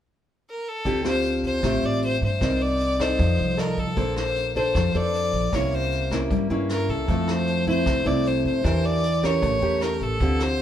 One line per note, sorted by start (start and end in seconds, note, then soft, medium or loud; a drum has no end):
0.49 0.70 A#4 medium
0.69 1.06 A4 medium
0.85 1.59 D2 medium
0.85 1.61 D3 soft
0.85 1.02 C4 medium
0.85 1.02 F4 medium
0.85 1.02 G4 medium
0.85 kick soft
0.85 closed hi-hat soft
1.04 1.60 C4 medium
1.04 1.60 F4 soft
1.04 1.60 G4 medium
1.04 1.42 C5 medium
1.04 cross-stick medium
1.04 closed hi-hat soft
1.24 closed hi-hat soft
1.44 1.87 C5 medium
1.44 kick soft
1.44 closed hi-hat soft
1.63 1.81 A1 medium
1.63 2.39 A3 soft
1.63 2.16 C4 soft
1.63 2.16 F4 soft
1.63 2.16 G4 soft
1.63 kick soft
1.63 cross-stick medium
1.63 closed hi-hat soft
1.82 2.19 A1 medium
1.82 2.03 D5 medium
1.82 closed hi-hat soft
2.02 2.21 C5 medium
2.02 closed hi-hat soft
2.22 2.40 G2 medium
2.22 2.63 C5 medium
2.22 kick soft
2.22 closed hi-hat soft
2.41 3.15 C2 medium
2.41 3.18 C4 medium
2.41 2.97 D#4 soft
2.41 2.97 A#4 soft
2.41 2.97 D5 medium
2.41 kick medium
2.41 cross-stick medium
2.41 closed hi-hat soft
2.60 3.03 D5 loud
2.60 closed hi-hat soft
2.80 closed hi-hat soft
2.99 3.55 D#4 medium
2.99 3.55 A4 medium
2.99 3.61 C5 medium
2.99 3.55 D5 medium
2.99 kick soft
2.99 cross-stick medium
2.99 closed hi-hat soft
3.19 3.37 F2 medium
3.19 3.95 F3 medium
3.19 kick medium
3.19 closed hi-hat soft
3.39 3.75 C2 medium
3.39 closed hi-hat soft
3.57 3.84 D#4 soft
3.57 3.84 A4 soft
3.57 3.81 A#4 medium
3.57 3.84 D5 medium
3.57 cross-stick soft
3.57 closed hi-hat soft
3.77 3.96 C2 medium
3.77 4.17 A4 medium
3.77 kick soft
3.77 closed hi-hat soft
3.96 4.71 A#1 medium
3.96 4.73 A#3 soft
3.96 4.52 D4 medium
3.96 4.52 A4 soft
3.96 4.52 C5 soft
3.96 kick medium
3.96 closed hi-hat soft
4.16 4.54 C5 medium
4.16 cross-stick medium
4.16 closed hi-hat soft
4.36 closed hi-hat soft
4.56 4.92 D4 medium
4.56 4.92 A4 medium
4.56 4.98 C5 medium
4.56 4.92 C5 medium
4.56 kick soft
4.56 closed hi-hat soft
4.75 4.93 F2 medium
4.75 5.52 F3 soft
4.75 kick medium
4.75 cross-stick medium
4.75 closed hi-hat soft
4.94 5.31 F2 medium
4.94 5.50 D4 medium
4.94 5.50 A4 medium
4.94 5.50 C5 medium
4.94 5.56 D5 medium
4.94 closed hi-hat soft
5.14 closed hi-hat soft
5.33 5.51 A#1 medium
5.33 kick soft
5.33 closed hi-hat soft
5.53 6.27 C2 medium
5.53 6.29 C3 medium
5.53 6.08 A#3 soft
5.53 6.08 C#4 soft
5.53 6.09 E4 soft
5.53 5.76 C#5 medium
5.53 kick soft
5.53 cross-stick medium
5.53 closed hi-hat soft
5.72 6.12 C5 medium
5.72 closed hi-hat soft
5.92 closed hi-hat soft
6.11 6.48 A#3 medium
6.11 6.48 C#4 medium
6.11 6.48 E4 medium
6.11 kick soft
6.11 cross-stick medium
6.11 closed hi-hat soft
6.30 6.49 G2 medium
6.30 7.07 G3 soft
6.30 kick soft
6.30 closed hi-hat soft
6.50 6.86 G2 medium
6.50 7.06 A#3 medium
6.50 7.06 C#4 medium
6.50 7.06 E4 medium
6.50 closed hi-hat soft
6.69 6.92 A#4 medium
6.69 cross-stick medium
6.69 closed hi-hat soft
6.89 7.07 C2 medium
6.89 7.32 A4 medium
6.89 kick soft
6.89 closed hi-hat soft
7.08 7.82 F2 medium
7.08 7.85 F3 soft
7.08 7.64 A3 soft
7.08 7.65 C4 soft
7.08 7.65 E4 medium
7.08 kick soft
7.08 closed hi-hat soft
7.28 7.68 C5 medium
7.28 cross-stick medium
7.28 closed hi-hat soft
7.47 closed hi-hat soft
7.67 8.03 A3 medium
7.67 8.03 C4 medium
7.67 8.03 E4 medium
7.67 8.09 C5 medium
7.67 kick soft
7.67 closed hi-hat soft
7.86 8.05 C2 medium
7.86 8.63 C3 soft
7.86 kick medium
7.86 cross-stick medium
7.86 closed hi-hat soft
8.05 8.42 C2 medium
8.05 8.61 A3 soft
8.05 8.61 C4 medium
8.05 8.61 E4 medium
8.05 8.29 D5 medium
8.05 closed hi-hat soft
8.26 8.46 C5 medium
8.26 closed hi-hat soft
8.45 8.63 F2 medium
8.45 8.87 C5 medium
8.45 kick soft
8.45 closed hi-hat soft
8.64 9.38 E2 medium
8.64 9.40 E3 medium
8.64 9.03 D4 soft
8.64 9.03 G4 soft
8.64 9.04 A#4 medium
8.64 kick medium
8.64 cross-stick soft
8.64 closed hi-hat soft
8.84 9.26 D5 loud
8.84 closed hi-hat soft
9.04 closed hi-hat soft
9.23 9.59 C#4 medium
9.23 9.59 G4 medium
9.23 9.59 A#4 medium
9.23 9.84 C#5 medium
9.23 kick soft
9.23 cross-stick medium
9.23 closed hi-hat soft
9.42 9.61 A1 medium
9.42 10.18 A3 soft
9.42 kick medium
9.42 closed hi-hat soft
9.62 9.98 E2 medium
9.62 10.17 C#4 medium
9.62 10.17 G4 medium
9.62 10.17 A#4 medium
9.62 closed hi-hat soft
9.81 10.04 A#4 medium
9.81 cross-stick medium
9.81 closed hi-hat soft
10.01 10.19 A1 medium
10.01 10.44 A4 medium
10.01 kick soft
10.01 closed hi-hat soft
10.20 10.62 D2 medium
10.20 10.62 D3 soft
10.20 10.62 C4 medium
10.20 10.62 F4 medium
10.20 10.62 G4 medium
10.20 kick medium
10.20 closed hi-hat soft
10.39 10.62 C5 loud
10.39 cross-stick medium
10.39 closed hi-hat soft